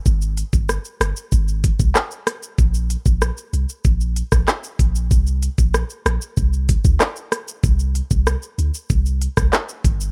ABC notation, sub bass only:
X:1
M:4/4
L:1/16
Q:1/4=95
K:Ablyd
V:1 name="Sub bass" clef=bass
A,,,3 G,,,2 z G,,, z A,,,3 C,, z4 | B,,,3 B,,,2 z C,, z B,,,3 B,,, z2 B,,,2 | C,,3 B,,,2 z B,,, z C,,3 D,, z4 | C,,3 C,,2 z D,, z C,,3 C,, z2 G,,,2 |]